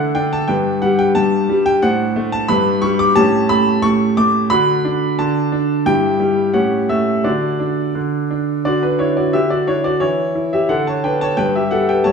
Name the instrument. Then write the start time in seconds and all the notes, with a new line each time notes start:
grand piano
Already playing: D3 D4 A4 F#5
0.15 D4 G5
0.33 A5
0.48 G2 D4 B4 G5
0.82 G3 F#5
0.99 G5
1.15 G2 A5
1.49 G3
1.66 G5
1.82 A2 D4 C5 F#5
2.16 A3
2.32 A5
2.48 G2 D4 B4 B5
2.82 G3 C#6
2.99 D6
3.16 A2 C#4 G4 A5
3.49 A3 B5
3.82 A2 C#6
4.17 A3 D6
4.50 D3 D4 F#4 B5
4.85 D4
5.19 D3 A5
5.52 D4
5.86 G2 E4 G4 G5
6.20 G3
6.54 A2 C#4 G4 F#5
6.89 A3 E5
7.24 D3 D4 F#4 D5
7.60 D4
7.95 D3
8.31 D4
8.65 D3 F#4 D5
8.83 D4 B4
8.99 D4 E4 C#5
9.17 F#4 D5
9.33 D3 G4 E5
9.50 F#4 D5
9.67 D4 E4 C#5
9.84 F#4 D5
10.00 E3 E4 C#5
10.35 E4
10.53 G4 E5
10.69 D3 A4 F#5
10.87 C#5 A5
11.04 D4 B4 G5
11.21 C#5 A5
11.37 G2 B4 G5
11.55 G4 E5
11.71 G3 A4 F#5
11.89 B4 G5
12.04 G2 C#5 A5